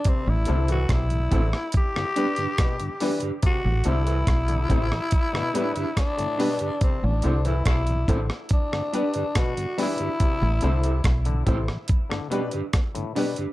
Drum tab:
HH |x-xxxxx-x-xxxxox|x-xxxxx-x-xxxxox|x-xxxxx-x-xxxxox|x-xxxxx-x-xxxxox|
SD |----r--r-r--r---|----r--r-r--r---|----r--r-r--r---|----r--r-r--r---|
BD |o---o-o-o---o---|o---o-o-o---o---|o---o-o-o---o---|o---o-o-o---o---|